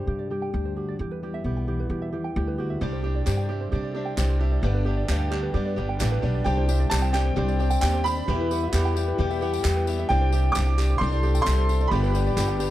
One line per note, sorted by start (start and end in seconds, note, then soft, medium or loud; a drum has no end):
0.00 0.30 G3 soft
0.00 0.53 D4 soft
0.00 0.77 G4 medium
0.00 0.42 C5 medium
0.00 0.18 G5 medium
0.07 0.96 G2 soft
0.07 0.46 C3 medium
0.07 0.30 G4 medium
0.19 0.42 D5 medium
0.31 1.22 G3 medium
0.31 0.52 G4 medium
0.42 0.88 G5 medium
0.53 0.92 D2 medium
0.53 0.97 D4 soft
0.53 0.75 G4 medium
0.65 0.99 C5 medium
0.77 0.97 F#4 soft
0.77 0.99 G4 medium
0.88 1.00 D5 medium
0.99 1.37 E2 medium
0.99 2.82 E2 medium
0.99 1.22 G4 medium
1.11 1.56 B4 medium
1.23 2.35 G3 medium
1.23 1.44 G4 medium
1.34 1.79 E5 medium
1.44 1.83 B1 medium
1.44 2.82 B3 medium
1.44 1.67 G4 medium
1.57 2.01 G5 medium
1.68 2.12 E3 medium
1.68 1.89 G4 medium
1.79 2.25 B4 medium
1.90 2.14 B2 soft
1.90 2.28 E3 medium
1.90 2.11 G4 medium
2.02 2.47 E5 medium
2.12 2.79 E3 medium
2.12 2.35 G4 medium
2.24 2.70 G5 medium
2.36 2.74 D2 loud
2.36 4.64 G3 medium
2.36 2.57 G4 medium
2.47 2.82 B4 medium
2.58 2.79 F#4 soft
2.58 2.80 G4 medium
2.70 2.82 E5 medium
2.81 3.20 C2 medium
2.81 4.60 C2 medium
2.81 3.04 C3 medium
2.81 4.60 C3 medium
2.81 2.99 G3 loud
2.81 3.05 G3 medium
2.81 3.05 C4 medium
2.81 2.99 D4 medium
2.81 3.04 D4 medium
2.81 3.02 G4 medium
2.81 3.03 G4 medium
2.81 2.99 C5 medium
2.81 3.00 D5 loud
2.93 3.38 C5 medium
3.03 3.22 G3 medium
3.03 3.26 C4 soft
3.03 3.22 D4 medium
3.03 3.26 D4 soft
3.03 3.25 G4 medium
3.03 3.27 G4 medium
3.03 3.22 C5 medium
3.03 3.22 D5 medium
3.15 3.61 D5 medium
3.26 3.65 G2 medium
3.26 3.49 C3 medium
3.26 3.44 G3 medium
3.26 3.50 G3 medium
3.26 3.50 C4 medium
3.26 3.44 D4 medium
3.26 3.50 D4 medium
3.26 3.47 G4 medium
3.26 3.48 G4 medium
3.26 3.45 C5 medium
3.26 3.45 D5 medium
3.26 clap medium
3.26 tambourine medium
3.37 3.84 G5 medium
3.48 3.66 G3 medium
3.48 3.72 C4 soft
3.48 3.67 D4 medium
3.48 3.73 D4 soft
3.48 3.70 G4 medium
3.48 3.72 G4 medium
3.48 3.67 C5 medium
3.48 3.67 E5 medium
3.61 4.07 C5 medium
3.72 4.11 C3 medium
3.72 3.89 G3 medium
3.72 3.95 G3 medium
3.72 3.96 C4 medium
3.72 3.90 D4 medium
3.72 3.95 D4 medium
3.72 3.93 G4 medium
3.72 3.90 C5 medium
3.72 3.90 D5 medium
3.83 4.29 D5 medium
3.94 4.12 G3 medium
3.94 4.12 D4 medium
3.94 4.18 D4 medium
3.94 4.16 G4 medium
3.94 4.18 G4 medium
3.94 4.12 C5 medium
3.94 4.13 E5 medium
3.98 4.18 C4 soft
4.05 4.52 G5 medium
4.17 4.56 C2 medium
4.17 4.41 C3 medium
4.17 4.35 G3 loud
4.17 4.41 G3 medium
4.17 4.41 C4 medium
4.17 4.35 D4 medium
4.17 4.42 D4 medium
4.17 4.39 G4 medium
4.17 4.35 C5 loud
4.17 4.35 D5 loud
4.17 clap medium
4.17 tambourine medium
4.29 4.63 C5 medium
4.40 4.57 G3 loud
4.40 4.58 D4 medium
4.40 4.64 D4 soft
4.40 4.62 G4 medium
4.40 4.64 G4 medium
4.40 4.58 C5 medium
4.40 4.58 E5 loud
4.44 4.64 C4 soft
4.52 4.64 D5 medium
4.62 6.41 G1 medium
4.62 5.01 G1 loud
4.62 6.42 G2 medium
4.62 4.86 G2 medium
4.62 4.87 D3 medium
4.62 4.80 G3 loud
4.62 4.87 G3 medium
4.62 4.87 B3 medium
4.62 4.80 D4 loud
4.62 4.86 D4 medium
4.62 4.84 G4 medium
4.62 4.80 B4 loud
4.62 4.81 D5 loud
4.66 4.85 G4 medium
4.74 5.20 B4 medium
4.85 5.03 G3 medium
4.85 5.09 B3 soft
4.85 5.03 D4 medium
4.85 5.09 D4 medium
4.85 5.07 G4 medium
4.85 5.09 G4 medium
4.85 5.03 B4 medium
4.85 5.04 E5 medium
4.89 5.09 G3 soft
4.97 5.43 D5 medium
5.08 5.47 D2 medium
5.08 5.32 G2 medium
5.08 5.32 D3 medium
5.08 5.26 G3 medium
5.08 5.33 G3 medium
5.08 5.33 B3 medium
5.08 5.26 D4 medium
5.08 5.32 D4 medium
5.08 5.29 G4 medium
5.08 5.30 G4 medium
5.08 5.26 B4 medium
5.08 5.26 D5 medium
5.08 clap medium
5.08 tambourine medium
5.19 5.66 G5 medium
5.31 5.48 G3 medium
5.31 5.54 B3 medium
5.31 5.49 D4 medium
5.31 5.55 D4 medium
5.31 5.52 G4 medium
5.31 5.55 G4 medium
5.31 5.49 B4 medium
5.31 5.49 D5 medium
5.31 clap medium
5.35 5.53 G3 soft
5.42 5.89 B4 medium
5.54 5.73 G2 medium
5.54 5.71 G3 medium
5.54 5.77 G3 medium
5.54 5.77 B3 medium
5.54 5.72 D4 medium
5.54 5.76 D4 medium
5.54 5.76 G4 medium
5.54 5.75 G4 medium
5.54 5.72 B4 medium
5.54 5.72 D5 loud
5.65 6.11 D5 medium
5.76 5.98 G1 medium
5.76 5.94 G3 medium
5.76 5.99 G3 soft
5.76 6.00 B3 medium
5.76 5.95 D4 medium
5.76 6.00 D4 medium
5.76 6.00 G4 medium
5.76 5.99 G4 medium
5.76 5.95 B4 medium
5.76 5.95 D5 medium
5.89 6.35 G5 medium
5.99 6.21 A1 medium
5.99 6.23 G2 medium
5.99 6.23 D3 medium
5.99 6.17 G3 loud
5.99 6.23 G3 medium
5.99 6.23 B3 medium
5.99 6.17 D4 loud
5.99 6.22 D4 medium
5.99 6.22 G4 medium
5.99 6.21 G4 medium
5.99 6.18 B4 loud
5.99 6.18 D5 loud
5.99 clap medium
5.99 tambourine loud
6.11 6.46 B4 medium
6.22 6.44 B1 medium
6.22 6.40 G3 loud
6.22 6.44 G3 medium
6.22 6.45 B3 medium
6.22 6.40 D4 loud
6.22 6.45 D4 medium
6.22 6.46 G4 medium
6.22 6.44 G4 medium
6.22 6.40 B4 loud
6.22 6.40 D5 loud
6.34 6.46 D5 medium
6.44 6.84 C2 loud
6.44 8.24 C2 medium
6.44 6.68 C3 medium
6.44 8.24 C3 medium
6.44 6.68 G3 medium
6.44 6.63 G3 loud
6.44 6.63 C4 medium
6.44 6.69 C4 medium
6.44 6.63 D4 medium
6.44 6.68 D4 medium
6.44 6.93 D4 medium
6.44 6.67 G4 medium
6.44 6.66 G4 medium
6.44 6.63 C5 medium
6.44 6.63 D5 loud
6.44 6.92 G5 medium
6.44 tambourine soft
6.57 7.03 C5 medium
6.67 6.86 G3 medium
6.67 6.86 C4 medium
6.67 6.90 C4 soft
6.67 6.91 D4 soft
6.67 6.86 D4 medium
6.67 6.91 G4 soft
6.67 6.90 G4 medium
6.67 6.86 C5 medium
6.67 6.86 E5 loud
6.67 tambourine medium
6.80 7.25 D5 medium
6.90 7.29 C2 medium
6.90 7.14 G3 medium
6.90 7.08 G3 medium
6.90 8.29 C4 loud
6.90 7.14 C4 medium
6.90 7.08 C4 medium
6.90 7.09 D4 medium
6.90 7.13 D4 medium
6.90 7.13 G4 medium
6.90 7.12 G4 medium
6.90 7.09 C5 medium
6.90 7.09 D5 medium
6.90 7.14 A5 medium
6.90 clap loud
6.90 tambourine loud
7.02 7.48 G5 medium
7.13 7.31 G3 medium
7.13 7.32 C4 medium
7.13 7.36 C4 soft
7.13 7.36 D4 medium
7.13 7.32 D4 medium
7.13 7.36 G4 medium
7.13 7.35 G4 medium
7.13 7.32 C5 medium
7.13 7.32 D5 medium
7.13 7.80 G5 medium
7.13 clap medium
7.13 tambourine medium
7.25 7.71 C5 medium
7.36 7.75 C2 loud
7.36 7.59 C3 medium
7.36 7.59 G3 medium
7.36 7.54 G3 medium
7.36 7.60 C4 medium
7.36 7.54 C4 medium
7.36 7.54 D4 medium
7.36 7.59 D4 medium
7.36 7.58 G4 medium
7.36 7.54 C5 medium
7.36 7.54 D5 medium
7.48 7.94 D5 medium
7.48 tambourine soft
7.59 7.76 G3 medium
7.59 7.77 C4 medium
7.59 7.82 C4 soft
7.59 7.77 D4 medium
7.59 7.83 D4 medium
7.59 7.82 G4 medium
7.59 7.81 G4 medium
7.59 7.77 C5 medium
7.59 7.77 D5 medium
7.59 tambourine soft
7.70 8.16 G5 medium
7.70 tambourine medium
7.81 8.20 D#2 medium
7.81 8.05 G3 medium
7.81 7.99 G3 loud
7.81 7.99 C4 medium
7.81 8.05 C4 medium
7.81 7.99 D4 loud
7.81 8.05 D4 medium
7.81 8.27 G4 medium
7.81 8.03 G4 medium
7.81 8.00 C5 medium
7.81 8.00 D5 loud
7.81 8.05 G5 medium
7.81 clap medium
7.81 tambourine medium
7.94 8.28 C5 medium
8.04 8.22 G3 medium
8.04 8.22 C4 medium
8.04 8.29 C4 medium
8.04 8.23 D4 medium
8.04 8.28 D4 medium
8.04 8.27 G4 medium
8.04 8.23 C5 medium
8.04 8.23 D5 medium
8.04 9.82 B5 loud
8.04 tambourine medium
8.17 8.28 D5 medium
8.17 tambourine soft
8.27 10.06 E2 medium
8.27 8.51 E2 medium
8.27 8.66 E2 loud
8.27 8.51 B2 medium
8.27 10.06 E3 medium
8.27 8.51 E3 medium
8.27 8.45 G3 loud
8.27 8.51 G3 medium
8.27 8.45 B3 medium
8.27 8.75 E4 loud
8.27 8.45 E4 medium
8.27 8.50 E4 loud
8.27 8.50 G4 medium
8.27 8.49 G4 loud
8.27 8.45 B4 loud
8.27 8.45 E5 loud
8.27 tambourine soft
8.40 8.85 B4 medium
8.50 8.71 E3 soft
8.50 8.68 G3 medium
8.50 8.68 B3 medium
8.50 8.68 E4 medium
8.50 8.74 E4 medium
8.50 8.73 G4 soft
8.50 8.73 G4 medium
8.50 8.68 B4 medium
8.50 8.68 F#5 loud
8.50 tambourine medium
8.63 9.08 E5 medium
8.73 9.11 E2 loud
8.73 8.96 E3 medium
8.73 8.90 G3 loud
8.73 8.96 G3 medium
8.73 8.91 B3 medium
8.73 8.91 E4 medium
8.73 8.96 E4 medium
8.73 10.10 G4 loud
8.73 8.95 G4 medium
8.73 8.94 G4 medium
8.73 8.91 B4 medium
8.73 8.91 F#5 loud
8.73 clap medium
8.73 tambourine medium
8.85 9.30 G5 medium
8.85 tambourine soft
8.95 9.19 E3 medium
8.95 9.12 G3 medium
8.95 9.19 G3 medium
8.95 9.13 B3 medium
8.95 9.13 E4 medium
8.95 9.19 E4 medium
8.95 9.19 G4 medium
8.95 9.18 G4 medium
8.95 9.13 B4 medium
8.95 9.13 E5 medium
8.95 tambourine medium
9.08 9.53 B4 medium
9.18 9.41 E2 medium
9.18 9.57 E2 loud
9.18 9.42 B2 medium
9.18 9.42 E3 medium
9.18 9.35 G3 medium
9.18 9.42 G3 medium
9.18 9.35 B3 medium
9.18 9.36 E4 medium
9.18 9.41 E4 loud
9.18 9.40 G4 medium
9.18 9.40 G4 loud
9.18 9.36 B4 medium
9.18 9.36 E5 medium
9.30 9.76 E5 medium
9.30 tambourine soft
9.41 9.63 E3 medium
9.41 9.58 G3 medium
9.41 9.64 G3 medium
9.41 9.58 B3 medium
9.41 9.59 E4 medium
9.41 9.65 E4 medium
9.41 9.64 G4 medium
9.41 9.63 G4 medium
9.41 9.59 B4 medium
9.41 9.59 F#5 loud
9.41 tambourine soft
9.53 9.98 G5 medium
9.53 tambourine medium
9.63 10.02 E2 loud
9.63 9.87 E3 medium
9.63 9.81 G3 loud
9.63 9.88 G3 medium
9.63 9.81 B3 loud
9.63 9.81 E4 loud
9.63 9.87 E4 medium
9.63 10.09 G4 medium
9.63 9.81 B4 loud
9.63 9.81 G5 loud
9.63 clap medium
9.63 tambourine loud
9.67 9.86 G4 medium
9.76 10.10 B4 medium
9.86 10.04 G3 medium
9.86 10.09 G3 medium
9.86 10.04 B3 medium
9.86 10.04 E4 medium
9.86 10.10 E4 medium
9.86 10.10 G4 medium
9.86 10.04 B4 medium
9.86 10.04 E5 loud
9.86 tambourine medium
9.91 10.10 E3 medium
9.99 10.10 E5 medium
9.99 tambourine soft
10.09 11.88 C2 medium
10.09 10.48 C2 loud
10.09 10.33 C3 medium
10.09 11.88 C3 medium
10.09 10.26 G3 loud
10.09 10.33 G3 medium
10.09 10.27 C4 medium
10.09 10.33 C4 medium
10.09 10.27 D4 loud
10.09 10.33 D4 medium
10.09 10.31 G4 medium
10.09 10.70 G4 loud
10.09 10.32 G4 medium
10.09 10.27 C5 medium
10.09 10.27 D5 loud
10.09 10.56 G5 loud
10.09 tambourine soft
10.21 10.67 C5 medium
10.31 10.49 G3 medium
10.31 10.49 C4 medium
10.31 10.49 D4 medium
10.31 10.56 D4 medium
10.31 10.54 G4 medium
10.31 10.55 G4 medium
10.31 10.49 C5 medium
10.31 10.50 E5 loud
10.31 tambourine medium
10.36 10.55 C4 soft
10.44 10.89 D5 medium
10.52 10.72 G3 medium
10.52 10.78 G3 medium
10.52 10.72 C4 medium
10.52 10.72 D4 medium
10.52 10.76 G4 medium
10.52 10.73 C5 medium
10.52 10.72 D5 medium
10.52 11.00 D6 loud
10.52 tambourine loud
10.56 10.94 C2 loud
10.56 10.78 C4 medium
10.56 10.78 D4 medium
10.56 10.76 G4 medium
10.56 clap medium
10.66 11.12 G5 medium
10.66 tambourine soft
10.77 10.94 G3 medium
10.77 10.95 C4 medium
10.77 10.95 D4 medium
10.77 11.01 D4 medium
10.77 11.00 G4 medium
10.77 10.99 G4 medium
10.77 10.95 C5 medium
10.77 10.95 D5 medium
10.77 clap medium
10.77 tambourine medium
10.81 11.01 C4 medium
10.89 11.35 C5 medium
10.98 11.39 C2 loud
10.98 11.24 C3 medium
10.98 11.17 G3 medium
10.98 11.24 G3 medium
10.98 11.17 C4 medium
10.98 11.17 D4 medium
10.98 11.22 G4 medium
10.98 11.93 A4 loud
10.98 11.17 C5 medium
10.98 11.17 D5 medium
10.98 11.40 C6 loud
11.03 11.24 C4 medium
11.03 11.24 D4 medium
11.03 11.22 G4 medium
11.12 11.57 D5 medium
11.12 tambourine soft
11.22 11.40 G3 medium
11.22 11.40 C4 medium
11.22 11.40 D4 medium
11.22 11.47 D4 soft
11.22 11.45 G4 medium
11.22 11.46 G4 medium
11.22 11.40 C5 medium
11.22 11.40 D5 medium
11.22 tambourine soft
11.27 11.46 C4 soft
11.34 11.80 G5 medium
11.34 tambourine medium
11.42 11.62 G3 loud
11.42 11.69 G3 medium
11.42 11.62 C4 medium
11.42 11.63 D4 loud
11.42 11.63 C5 medium
11.42 11.63 E5 loud
11.42 11.86 C6 loud
11.46 11.84 C2 medium
11.46 11.69 C4 medium
11.46 11.90 G4 medium
11.46 11.68 G4 medium
11.46 clap medium
11.46 tambourine loud
11.58 11.92 C5 medium
11.67 11.85 G3 medium
11.67 11.85 C4 medium
11.67 11.85 D4 medium
11.67 11.92 G4 medium
11.67 11.85 C5 medium
11.67 11.86 E5 medium
11.67 tambourine medium
11.71 11.93 C4 soft
11.71 11.92 D4 medium
11.81 11.92 D5 medium
11.81 tambourine soft
11.87 12.70 G1 medium
11.87 12.29 G1 loud
11.87 12.70 G2 medium
11.87 12.08 G3 loud
11.87 12.08 B3 loud
11.87 12.08 D4 medium
11.87 12.13 G4 medium
11.87 12.70 G4 loud
11.87 12.08 B4 medium
11.87 12.08 D5 loud
11.87 12.70 B5 loud
11.92 12.14 G2 medium
11.92 12.15 D3 medium
11.92 12.15 G3 medium
11.92 12.15 B3 medium
11.92 12.14 D4 medium
11.92 12.12 G4 medium
11.92 tambourine soft
12.03 12.48 B4 medium
12.03 tambourine soft
12.12 12.30 G3 medium
12.12 12.30 B3 medium
12.12 12.37 B3 soft
12.12 12.31 D4 medium
12.12 12.37 D4 soft
12.12 12.37 G4 soft
12.12 12.36 G4 medium
12.12 12.31 B4 medium
12.12 12.31 D5 medium
12.12 tambourine medium
12.16 12.35 G3 soft
12.26 12.70 D5 medium
12.26 tambourine soft
12.35 12.70 G1 loud
12.35 12.53 G3 medium
12.35 12.60 G3 medium
12.35 12.53 B3 medium
12.35 12.60 B3 medium
12.35 12.53 D4 medium
12.35 12.58 G4 medium
12.35 12.54 B4 medium
12.35 12.54 D5 medium
12.35 clap medium
12.35 tambourine loud
12.39 12.60 D4 medium
12.39 12.59 G4 medium
12.48 12.70 G5 medium
12.48 tambourine soft
12.58 12.70 G3 medium
12.58 12.70 B3 medium
12.58 12.70 D4 medium
12.58 12.70 G4 medium
12.58 12.70 B4 medium
12.58 12.70 D5 loud
12.58 tambourine medium
12.63 12.70 G3 medium